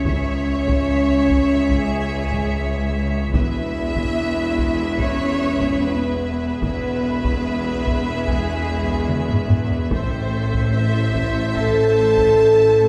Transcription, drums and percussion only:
0.05 taiko medium
0.67 taiko medium
1.29 taiko medium
1.70 taiko medium
2.32 taiko medium
3.34 taiko medium
3.96 taiko medium
4.58 taiko medium
4.99 taiko medium
5.60 taiko medium
6.63 taiko medium
7.24 taiko medium
7.86 taiko medium
8.27 taiko medium
8.89 taiko medium
9.09 taiko mid medium
9.30 taiko low-mid medium
9.50 taiko low-mid medium
9.70 taiko low medium
9.91 taiko medium
10.53 taiko medium
11.15 taiko medium
11.56 taiko medium
12.17 taiko medium

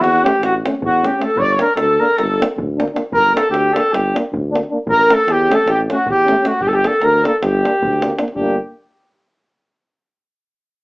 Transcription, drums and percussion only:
0.04 davul high medium
0.26 davul high medium
0.35 davul high soft
0.43 davul high medium
0.66 davul high medium
0.75 davul high soft
0.82 davul low loud
1.04 davul high medium
1.22 davul high medium
1.30 davul high soft
1.37 davul low medium
1.59 davul high medium
1.77 davul high medium
2.10 davul high soft
2.18 davul high medium
2.42 davul high medium
2.58 davul low loud
2.80 davul high medium
2.88 davul high soft
2.96 davul high medium
3.12 davul low loud
3.37 davul high medium
3.54 davul high medium
3.76 davul high medium
3.86 davul high soft
3.94 davul high medium
4.16 davul high medium
4.34 davul low loud
4.55 davul high medium
4.63 davul high soft
4.87 davul low medium
5.10 davul high medium
5.28 davul high medium
5.51 davul high medium
5.60 davul high soft
5.68 davul high medium
5.90 davul high medium
6.07 davul low medium
6.28 davul high medium
6.45 davul high medium
6.61 davul low medium
6.73 davul high soft
6.84 davul high medium
6.93 davul high soft
7.02 davul high medium
7.25 davul high medium
7.43 davul high medium
7.65 davul high medium
7.75 davul high soft
7.83 davul low medium
7.93 davul high soft
8.02 davul high medium
8.10 davul high soft
8.19 davul high medium
8.28 davul high soft
8.36 davul low medium

